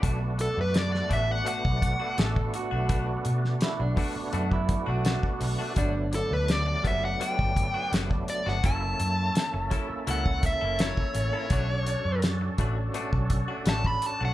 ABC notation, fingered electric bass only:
X:1
M:4/4
L:1/16
Q:1/4=84
K:Bm
V:1 name="Fingered electric bass" clef=bass
B,,,3 F,,3 A,,,2 z B,,,2 z A,,,2 z B,,,- | B,,,2 B,,2 z B,,, z2 F,,3 B,,,2 z B,,, z | G,,,3 D,,3 F,,,2 z G,,,2 z F,,,2 z G,,, | F,,,2 F,,2 z F,,, z2 C,,3 F,,,2 z A,,, z |
B,,,3 F,,3 A,,,2 z B,,,2 z A,,,2 z B,,, |]